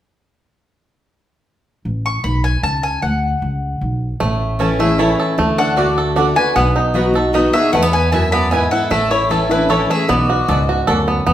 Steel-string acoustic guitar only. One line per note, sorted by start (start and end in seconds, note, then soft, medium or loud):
4.20 4.95 A2 medium
4.59 4.79 E3 medium
4.59 4.79 A3 medium
4.59 4.79 C#4 medium
4.59 4.78 E4 medium
4.79 4.98 C#4 medium
4.79 4.98 E4 medium
4.98 5.36 E3 medium
4.98 5.36 A3 medium
4.98 5.37 C#4 medium
4.98 5.37 E4 medium
5.38 5.75 D3 medium
5.76 6.14 D3 medium
5.76 6.15 A3 medium
5.76 6.15 D4 medium
5.76 6.15 F#4 medium
6.16 6.35 D3 medium
6.16 6.36 A3 medium
6.16 6.36 D4 medium
6.16 6.35 F#4 medium
6.36 6.56 D4 soft
6.36 6.55 F#4 medium
6.56 7.30 B2 medium
6.94 7.14 F#3 medium
6.94 7.14 B3 medium
6.94 7.15 D#4 medium
6.94 7.12 F#4 medium
7.14 7.34 D#4 soft
7.14 7.33 F#4 medium
7.33 7.53 F#3 medium
7.33 7.53 B3 medium
7.33 7.54 D#4 medium
7.33 7.52 F#4 medium
7.54 7.73 D#4 soft
7.54 7.72 F#4 medium
7.73 8.12 E2 medium
8.12 8.50 F#2 medium
8.52 8.89 G#2 medium
8.90 9.66 A2 medium
9.29 9.49 E3 medium
9.29 9.50 A3 medium
9.29 9.50 C#4 medium
9.29 9.48 E4 medium
9.49 9.69 C#4 soft
9.49 9.69 E4 medium
9.69 10.07 E3 medium
9.69 10.07 A3 medium
9.69 10.07 C#4 medium
9.69 10.08 E4 medium
10.09 10.84 B2 medium
10.48 10.86 G#2 medium
10.88 11.25 F#2 medium
11.27 11.33 E2 medium